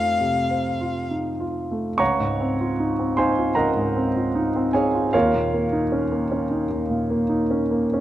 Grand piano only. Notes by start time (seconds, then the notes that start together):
Already playing: F2 A3 D#4 F4 C5
0.20 C3
0.50 C5
0.81 F4
1.11 D#4
1.40 F4
1.71 A3
1.98 C#2 C#5 F#5 A#5 C#6
2.20 G#2
2.40 C4
2.60 F4
2.80 D#4
2.99 C4
3.17 D#4 C5 F5 G#5 C6
3.38 F4
3.55 C#2 A#4 D#5 F#5 A#5
3.77 G#2
3.96 C4
4.16 F4
4.35 D#4
4.56 C4
4.73 D#4 G#4 C#5 F5 G#5
4.94 F4
5.13 D#2 F4 A#4 C#5 F5
5.35 A#2
5.53 A#3
5.73 D#4
5.92 C#4
6.12 A#3
6.32 C#4
6.51 D#4
6.70 D#2
6.90 A#2
7.10 A#3
7.29 D#4
7.51 C#4
7.71 A#3
7.94 C#4